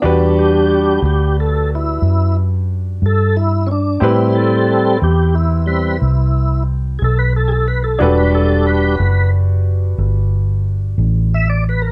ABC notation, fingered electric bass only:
X:1
M:12/8
L:1/8
Q:3/8=60
K:Em
V:1 name="Fingered electric bass" clef=bass
E,,3 D,,3 F,,3 G,,3 | A,,3 E,,3 C,,3 B,,,3 | E,,,3 F,,,3 G,,,3 A,,,3 |]